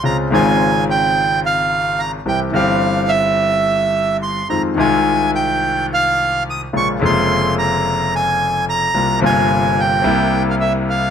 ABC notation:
X:1
M:4/4
L:1/16
Q:1/4=108
K:Cphr
V:1 name="Bandoneon"
b2 a4 g4 f4 b2 | g2 f4 =e8 c'2 | b2 a4 g4 f4 e'2 | d'2 c'4 b4 a4 b2- |
b2 a4 g4- g f =e2 f2 |]
V:2 name="Grand piano" clef=bass
[D,,D,A,CF]2 [A,,,A,,D,A,CF]12- [A,,,A,,D,A,CF]2 | [C,,C,=E,G,CG]2 [G,,,G,,E,G,CG]12- [G,,,G,,E,G,CG]2 | [F,,E,F,A,CF]2 [C,,C,E,A,CF]12- [C,,C,E,A,CF]2 | [B,,,B,,D,A,B,F]2 [F,,,F,,D,A,B,F]12- [F,,,F,,D,A,B,F]2 |
[C,,C,G,B,F]2 [G,,,G,,C,G,B,F]6 [C,,C,G,B,=E]8 |]